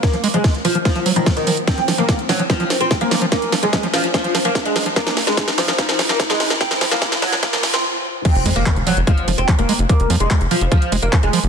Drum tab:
CC |----------------|----------------|----------------|----------------|
HH |xxoxxxoxxxoxxxox|xxoxxxoxxxoxxxox|xxoxxxoxxxoxxxox|xxoxxxoxxxo-xxox|
CP |----------------|----------------|----------------|----------------|
SD |o---o---o---o---|o-o-o-o-o-o-o-o-|o-o-o-o-o-o-o-o-|oooooooooooooooo|
BD |o---o---o---o---|o---o---o---o---|o---o---o---o---|o---o---o---o---|

CC |----------------|x---------------|----------------|
HH |xxoxxxoxxxox----|xxoxxxoxxxoxxxox|xxoxxxoxxxoxxxox|
CP |----------------|----x-------x---|----x-------x---|
SD |oooooooooooo----|----------------|----------------|
BD |o---o---o-------|o---o---o---o---|o---o---o---o---|